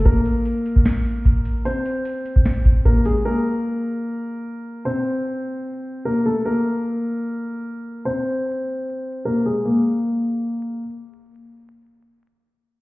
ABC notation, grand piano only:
X:1
M:4/4
L:1/8
Q:1/4=150
K:Abmix
V:1 name="Grand piano"
[B,B]8 | [Cc]6 [B,B] [A,A] | [B,B]8 | [Cc]6 [B,B] [=A,=A] |
[B,B]8 | [Cc]6 [B,B] [A,A] | B,6 z2 | z8 |]